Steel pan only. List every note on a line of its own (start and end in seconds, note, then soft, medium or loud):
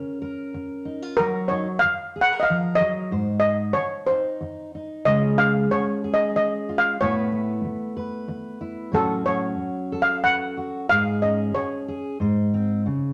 0.00 0.48 C#5 medium
1.17 1.47 A#4 medium
1.48 1.82 C#5 medium
1.79 2.25 F5 medium
2.21 2.38 F#5 medium
2.40 2.46 D#5 medium
2.40 2.78 F5 medium
2.75 3.38 D#5 medium
3.40 3.71 D#5 medium
3.73 4.08 C#5 medium
4.07 4.68 C5 medium
5.05 5.38 D#5 loud
5.38 5.68 F5 medium
5.71 6.11 C#5 medium
6.14 6.35 D#5 medium
6.36 6.80 D#5 medium
6.78 7.00 F5 medium
7.01 8.26 C#5 medium
8.95 9.28 A4 medium
9.26 10.04 C#5 medium
10.02 10.22 F5 medium
10.24 10.91 F#5 medium
10.89 11.23 F5 loud
11.22 11.55 D#5 medium
11.55 12.16 C#5 medium